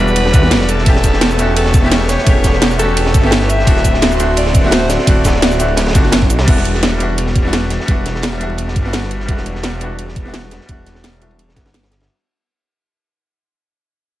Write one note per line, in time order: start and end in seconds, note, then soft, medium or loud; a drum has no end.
0.00 0.35 E1 loud
0.00 0.32 G3 loud
0.00 0.82 G3 medium
0.00 0.33 B3 medium
0.00 0.34 D4 medium
0.00 0.34 E4 medium
0.00 0.35 F#4 loud
0.00 0.71 B4 loud
0.00 0.84 D5 medium
0.00 0.88 F#5 loud
0.00 0.82 D6 medium
0.08 shaker soft
0.16 closed hi-hat medium
0.16 ride medium
0.25 cross-stick medium
0.25 snare medium
0.32 0.53 E2 medium
0.32 0.41 G3 medium
0.32 0.42 B3 medium
0.32 0.42 D4 medium
0.32 0.42 E4 medium
0.32 0.43 F#4 medium
0.32 kick loud
0.32 closed hi-hat medium
0.32 ride medium
0.32 shaker medium
0.43 cross-stick soft
0.43 snare soft
0.43 ride soft
0.51 0.85 E1 loud
0.51 snare loud
0.51 closed hi-hat medium
0.51 ride loud
0.51 ride medium
0.61 snare medium
0.69 1.56 A4 loud
0.69 closed hi-hat medium
0.69 ride medium
0.69 shaker medium
0.78 snare soft
0.83 2.17 E1 loud
0.83 1.34 A3 medium
0.83 1.36 B3 medium
0.83 1.37 C#4 medium
0.83 3.64 A4 medium
0.83 3.64 C#6 medium
0.83 kick loud
0.83 closed hi-hat medium
0.83 ride medium
0.88 1.38 E4 medium
0.88 1.38 G4 loud
0.96 snare soft
1.04 kick medium
1.04 closed hi-hat medium
1.04 ride medium
1.04 shaker medium
1.13 snare soft
1.21 snare loud
1.21 closed hi-hat medium
1.21 ride medium
1.31 cross-stick soft
1.31 shaker soft
1.36 1.79 A3 medium
1.36 1.80 B3 medium
1.36 1.81 C#4 medium
1.36 closed hi-hat medium
1.36 ride medium
1.36 shaker medium
1.40 1.82 E4 medium
1.40 1.83 F#4 medium
1.56 2.10 A4 loud
1.56 closed hi-hat medium
1.56 ride medium
1.66 snare soft
1.74 kick loud
1.74 closed hi-hat medium
1.74 ride medium
1.74 shaker medium
1.80 2.22 A3 medium
1.80 2.24 B3 medium
1.80 2.25 C#4 medium
1.80 snare soft
1.85 2.25 E4 medium
1.85 2.26 G4 loud
1.91 snare loud
1.91 closed hi-hat medium
1.91 ride medium
2.01 snare soft
2.09 2.53 C#5 loud
2.09 snare medium
2.09 closed hi-hat medium
2.09 ride medium
2.09 shaker medium
2.18 snare soft
2.24 3.16 E1 loud
2.24 2.75 A3 medium
2.24 2.76 B3 medium
2.24 2.77 C#4 medium
2.24 kick loud
2.24 closed hi-hat loud
2.24 ride medium
2.28 2.78 E4 medium
2.28 2.79 G4 loud
2.44 kick medium
2.44 snare soft
2.44 closed hi-hat medium
2.44 ride medium
2.44 shaker medium
2.53 snare soft
2.62 snare loud
2.62 closed hi-hat medium
2.62 ride medium
2.71 cross-stick soft
2.71 shaker soft
2.76 3.19 A3 medium
2.76 3.21 B3 medium
2.76 3.22 C#4 medium
2.76 3.51 A4 loud
2.76 closed hi-hat medium
2.76 ride medium
2.76 shaker medium
2.81 3.22 E4 medium
2.81 3.23 F#4 loud
2.89 ride soft
2.97 closed hi-hat loud
2.97 ride loud
2.97 ride medium
3.06 cross-stick medium
3.06 snare medium
3.14 3.66 G1 loud
3.14 kick loud
3.14 closed hi-hat medium
3.14 ride medium
3.14 shaker medium
3.21 3.62 A3 medium
3.21 3.64 B3 medium
3.21 3.65 C#4 medium
3.21 cross-stick soft
3.21 snare soft
3.21 ride soft
3.25 3.66 E4 medium
3.25 3.66 G4 loud
3.31 snare loud
3.31 closed hi-hat medium
3.31 ride loud
3.31 ride medium
3.41 snare medium
3.49 4.20 E5 loud
3.49 closed hi-hat medium
3.49 ride medium
3.49 shaker medium
3.59 snare soft
3.64 4.98 D1 loud
3.64 4.15 A3 loud
3.64 4.17 C4 medium
3.64 4.17 D4 medium
3.64 6.45 F#4 medium
3.64 6.45 E5 medium
3.64 6.45 C6 medium
3.64 kick loud
3.64 closed hi-hat medium
3.64 ride medium
3.68 4.18 E4 medium
3.68 4.19 F#4 loud
3.77 snare soft
3.84 kick medium
3.84 closed hi-hat medium
3.84 ride medium
3.84 shaker medium
3.94 snare soft
4.02 snare loud
4.02 closed hi-hat loud
4.02 ride medium
4.12 cross-stick soft
4.12 shaker soft
4.17 4.60 A3 medium
4.17 4.61 C4 medium
4.17 4.62 D4 medium
4.17 4.63 E4 medium
4.17 closed hi-hat medium
4.17 ride medium
4.17 shaker medium
4.22 4.64 F#4 medium
4.37 4.74 D5 loud
4.37 closed hi-hat loud
4.37 ride loud
4.37 ride medium
4.46 snare soft
4.54 kick loud
4.54 closed hi-hat medium
4.54 ride medium
4.54 shaker medium
4.61 5.03 A3 loud
4.61 5.04 C4 medium
4.61 5.05 D4 medium
4.61 snare soft
4.65 5.06 E4 medium
4.65 5.07 F#4 loud
4.71 4.91 C5 loud
4.71 snare loud
4.71 closed hi-hat loud
4.71 ride loud
4.71 ride medium
4.82 snare soft
4.89 6.13 D5 loud
4.89 snare medium
4.89 closed hi-hat medium
4.89 ride medium
4.89 shaker medium
4.99 snare medium
5.04 5.96 D1 loud
5.04 5.56 A3 medium
5.04 5.57 C4 medium
5.04 5.58 D4 medium
5.04 kick loud
5.04 closed hi-hat loud
5.04 ride medium
5.08 5.59 E4 medium
5.08 5.59 F#4 loud
5.24 kick medium
5.24 snare loud
5.24 closed hi-hat medium
5.24 ride medium
5.24 shaker medium
5.35 snare medium
5.42 snare loud
5.42 closed hi-hat loud
5.42 ride medium
5.52 cross-stick soft
5.52 shaker soft
5.58 5.92 A3 medium
5.58 5.93 C4 medium
5.58 5.93 D4 medium
5.58 5.94 E4 medium
5.58 5.94 F#4 medium
5.58 closed hi-hat medium
5.58 ride medium
5.58 shaker medium
5.68 ride soft
5.77 snare loud
5.77 closed hi-hat loud
5.77 ride medium
5.86 cross-stick medium
5.86 snare medium
5.86 ride medium
5.91 6.02 A3 medium
5.91 6.03 C4 medium
5.91 6.03 D4 medium
5.91 snare medium
5.91 ride medium
5.95 6.32 F#1 medium
5.95 6.03 E4 medium
5.95 6.04 F#4 medium
5.95 kick loud
5.95 closed hi-hat medium
5.95 ride medium
5.95 shaker medium
6.04 cross-stick soft
6.04 snare soft
6.04 ride soft
6.12 snare loud
6.12 closed hi-hat loud
6.12 ride medium
6.22 kick medium
6.29 6.46 C2 loud
6.29 closed hi-hat medium
6.29 ride medium
6.29 shaker medium
6.39 snare loud
6.39 ride medium
6.45 7.78 E1 loud
6.45 6.96 G3 medium
6.45 6.97 B3 medium
6.45 6.98 D4 medium
6.45 kick loud
6.45 closed hi-hat loud
6.45 ride loud
6.45 crash medium
6.49 6.99 E4 medium
6.49 7.00 F#4 loud
6.57 snare soft
6.64 closed hi-hat medium
6.64 ride medium
6.75 snare soft
6.83 snare loud
6.83 closed hi-hat loud
6.83 ride medium
6.92 cross-stick soft
6.98 7.41 G3 medium
6.98 7.42 B3 medium
6.98 7.43 D4 medium
6.98 7.44 E4 medium
6.98 closed hi-hat medium
6.98 ride medium
7.03 7.44 F#4 medium
7.18 closed hi-hat loud
7.18 ride medium
7.27 snare soft
7.35 kick loud
7.35 closed hi-hat medium
7.35 ride medium
7.42 7.84 G3 medium
7.42 7.85 B3 medium
7.42 7.86 D4 medium
7.42 7.87 E4 medium
7.42 snare soft
7.48 7.88 F#4 medium
7.53 snare loud
7.53 closed hi-hat medium
7.53 ride medium
7.62 snare soft
7.70 snare medium
7.70 closed hi-hat medium
7.70 ride medium
7.80 snare soft
7.85 8.77 E1 loud
7.85 8.36 G3 medium
7.85 8.38 B3 medium
7.85 8.39 D4 medium
7.85 kick loud
7.85 closed hi-hat medium
7.85 ride medium
7.90 8.39 E4 medium
7.90 8.40 F#4 loud
8.06 snare soft
8.06 closed hi-hat medium
8.06 ride medium
8.15 snare soft
8.22 snare loud
8.22 closed hi-hat medium
8.22 ride medium
8.33 cross-stick soft
8.38 8.81 G3 medium
8.38 8.82 B3 medium
8.38 8.83 D4 medium
8.38 closed hi-hat medium
8.38 ride medium
8.42 8.84 E4 medium
8.42 8.85 F#4 medium
8.50 ride soft
8.58 closed hi-hat loud
8.58 ride medium
8.68 snare medium
8.76 9.27 G1 medium
8.76 kick loud
8.76 closed hi-hat medium
8.76 ride medium
8.82 9.24 G3 medium
8.82 9.25 B3 medium
8.82 9.26 D4 medium
8.82 snare soft
8.82 ride soft
8.86 9.27 E4 medium
8.86 9.28 F#4 loud
8.93 snare loud
8.93 closed hi-hat medium
8.93 ride medium
9.03 snare medium
9.11 closed hi-hat medium
9.11 ride medium
9.20 snare soft
9.26 10.59 E1 loud
9.26 9.77 G3 medium
9.26 9.78 B3 medium
9.26 9.79 D4 medium
9.26 kick loud
9.26 closed hi-hat medium
9.26 ride medium
9.30 9.80 E4 medium
9.30 9.80 F#4 loud
9.37 snare soft
9.46 closed hi-hat medium
9.46 ride medium
9.55 snare soft
9.63 snare loud
9.63 closed hi-hat medium
9.63 ride medium
9.78 10.21 G3 medium
9.78 10.23 B3 medium
9.78 10.24 D4 medium
9.78 closed hi-hat medium
9.78 ride medium
9.83 10.24 E4 medium
9.83 10.25 F#4 medium
9.99 closed hi-hat medium
9.99 ride medium
10.08 snare soft
10.16 kick loud
10.16 closed hi-hat medium
10.16 ride medium
10.23 10.64 G3 medium
10.23 10.66 B3 medium
10.23 10.67 D4 medium
10.23 snare soft
10.27 10.68 E4 medium
10.27 10.68 F#4 medium
10.34 snare loud
10.34 closed hi-hat medium
10.34 ride medium
10.43 snare soft
10.51 snare medium
10.51 closed hi-hat medium
10.51 ride medium
10.61 snare soft
10.66 11.58 E1 loud
10.66 11.18 G3 medium
10.66 11.19 B3 medium
10.66 11.19 D4 medium
10.66 kick loud
10.66 closed hi-hat medium
10.66 ride medium
10.70 11.20 E4 medium
10.70 11.21 F#4 loud
10.86 snare soft
10.86 closed hi-hat medium
10.86 ride medium
10.95 snare soft
11.04 snare loud
11.04 closed hi-hat medium
11.04 ride medium
11.20 11.54 G3 medium
11.20 11.54 B3 medium
11.20 11.55 D4 medium
11.20 11.55 E4 medium
11.20 11.55 F#4 medium
11.20 closed hi-hat medium
11.20 ride medium
11.31 ride soft
11.39 closed hi-hat medium
11.39 ride medium
11.49 snare soft
11.55 12.08 G1 medium
11.55 11.64 G3 medium
11.55 11.64 B3 medium
11.55 11.65 D4 medium
11.55 11.65 E4 medium
11.55 11.65 F#4 medium
11.55 kick loud
11.55 snare loud
11.55 closed hi-hat medium
11.55 ride medium
11.65 snare medium
11.65 snare soft
11.65 ride medium
11.74 snare loud
11.74 closed hi-hat medium
11.74 ride medium
11.83 snare loud
11.83 ride medium
11.91 snare medium
11.91 closed hi-hat medium
11.91 ride medium
12.00 snare medium
12.00 ride medium